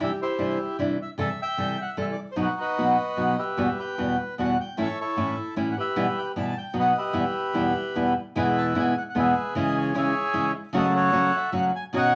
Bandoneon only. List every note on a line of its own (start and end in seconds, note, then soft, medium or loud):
0.03 0.21 G4 medium
0.03 0.12 E5 medium
0.22 0.77 E4 soft
0.22 0.77 G4 medium
0.22 0.58 C5 medium
1.02 1.10 E5 medium
1.21 1.41 E5 medium
1.21 1.29 A5 medium
1.42 1.96 E5 medium
1.42 1.78 G5 loud
1.82 1.90 F#5 medium
2.02 2.05 E5 medium
2.12 2.20 D5 medium
2.32 2.35 C5 medium
2.41 2.95 D#4 soft
2.41 2.59 F#4 medium
2.41 2.50 B4 medium
2.61 3.35 F#4 medium
2.61 3.35 B4 medium
2.61 3.42 D#5 medium
3.38 3.95 G4 medium
3.38 3.78 B4 soft
3.38 3.80 E5 medium
3.79 4.35 B4 medium
3.79 4.16 G5 medium
4.40 4.58 F#5 medium
4.61 4.78 G5 medium
4.81 5.00 A4 medium
4.81 4.99 C#5 soft
4.81 4.98 E5 medium
5.01 5.55 E4 medium
5.01 5.55 A4 soft
5.01 5.36 C#5 medium
5.71 5.77 F#5 medium
5.77 6.32 G4 medium
5.77 6.32 B4 medium
5.77 6.19 E5 medium
6.18 6.27 G5 medium
6.39 6.57 A5 medium
6.58 6.77 G5 medium
6.79 6.97 B4 medium
6.79 7.15 D#5 medium
6.79 6.87 F#5 medium
6.98 8.13 G4 soft
6.98 8.13 B4 medium
6.98 8.13 E5 medium
8.37 8.93 B4 medium
8.37 8.93 E5 medium
8.37 8.46 G#5 medium
8.58 8.67 A5 medium
8.79 8.97 G#5 medium
8.98 9.03 F#5 medium
9.10 9.16 F#5 medium
9.18 9.54 G#4 medium
9.18 9.54 B4 medium
9.18 9.55 E5 medium
9.57 9.95 G#4 medium
9.57 9.77 D#5 medium
9.78 9.95 C#5 medium
9.97 10.51 G#4 medium
9.97 10.52 C#5 medium
9.97 10.52 E5 medium
10.77 10.94 F#4 medium
10.77 10.94 A4 medium
10.77 10.86 D#5 medium
10.95 11.50 F#4 medium
10.95 11.50 A4 medium
10.95 11.36 C#5 medium
11.37 11.54 E5 medium
11.56 11.64 F#5 medium
11.76 11.84 G#5 medium
11.96 12.15 C#5 medium
11.96 12.15 D#5 medium
11.96 12.15 F#5 loud